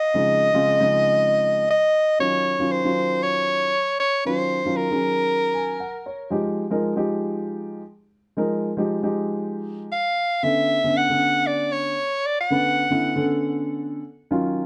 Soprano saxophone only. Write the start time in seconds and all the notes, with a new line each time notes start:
Already playing: D#5
1.71 D#5
2.21 C#5
2.72 C5
3.23 C#5
4.00 C#5
4.27 C5
4.77 A#4
9.92 F5
10.44 E5
10.98 F#5
11.47 D5
11.73 C#5
12.26 D5
12.41 F#5